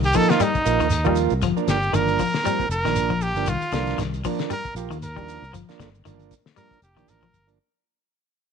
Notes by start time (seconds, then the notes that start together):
Already playing: C2
0.03 G4, closed hi-hat, shekere
0.13 F3 A#3 D#4 A4, kick, open hi-hat, shekere
0.29 F4, snare, closed hi-hat, shekere
0.40 G3 D#4, closed hi-hat, shekere
0.55 kick, shekere
0.65 A#1 F3 A#3 D#4, closed hi-hat, shekere
0.80 D#2 D#3, closed hi-hat, shekere
0.90 closed hi-hat, shekere
1.04 F3 G3 A#3 F4, kick, shekere
1.16 closed hi-hat, shekere
1.30 C2, shekere
1.42 G1 F3, kick, closed hi-hat, shekere
1.56 F3 A#3 D4, muted fingered electric bass stroke, shekere
1.68 G1 G4, snare, closed hi-hat, shekere
1.82 shekere
1.93 G1 D#3 F3 A#3 D4 A#4, closed hi-hat, shekere
2.08 closed hi-hat, shekere
2.19 F3, kick, open hi-hat, shekere
2.34 snare, shekere
2.44 F3 G3 A#3 C4, closed hi-hat, shekere
2.60 kick, shekere
2.69 F1 A#4, closed hi-hat, shekere
2.84 A#1 D#3 F3 A#3 D4, snare, closed hi-hat, shekere
2.96 closed hi-hat, shekere
3.10 F3, kick, shekere
3.21 G4, closed hi-hat, shekere
3.35 G1 F3 A#3 D4, closed hi-hat, shekere
3.46 C2 D#3 F4, kick, closed hi-hat, shekere
3.61 muted fingered electric bass stroke, closed hi-hat, shekere
3.72 C2 D3 F3 A#3 D4, snare, closed hi-hat, shekere
3.87 snare, shekere
3.98 C2 D#3, snare, closed hi-hat, shekere
4.14 closed hi-hat, shekere
4.24 F3 A#3 D4, kick, open hi-hat, shekere
4.39 snare, closed hi-hat, shekere
4.50 G3 A#4, closed hi-hat, shekere
4.65 kick, shekere
4.75 A#1 F3 A#3 F4 G4, closed hi-hat, shekere
4.89 D#2 D#3, closed hi-hat, shekere
5.02 A#4, closed hi-hat, shekere
5.16 F3 G3 A#3 D4, kick, shekere
5.28 closed hi-hat, shekere
5.42 C2, shekere
5.53 G1 F3, kick, closed hi-hat, shekere
5.69 F3 A#3 D4, snare, shekere
5.79 G1 D3, kick, snare, closed hi-hat, shekere
5.95 shekere
6.05 G1 D#3 F3 A#3 D4, closed hi-hat, shekere
6.19 closed hi-hat, shekere
6.31 kick, closed hi-hat, shekere
6.46 snare, shekere
6.56 F3 G3 A#3 D4 A#4, closed hi-hat, shekere
6.71 kick, shekere
6.82 F1 G4, closed hi-hat, shekere
6.96 A#1 D#3 F3 A#3 D4, closed hi-hat, shekere
7.07 A1 A#4, closed hi-hat, shekere
7.22 F3, kick, shekere
7.34 G1, kick, closed hi-hat, shekere
7.47 F3 A#3 D4, closed hi-hat, shekere